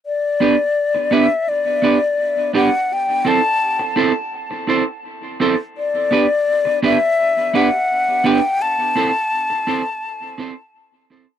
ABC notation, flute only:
X:1
M:4/4
L:1/8
Q:1/4=84
K:G
V:1 name="Flute"
d3 e d3 f | g a2 z4 z | d3 e2 f2 g | a6- a z |]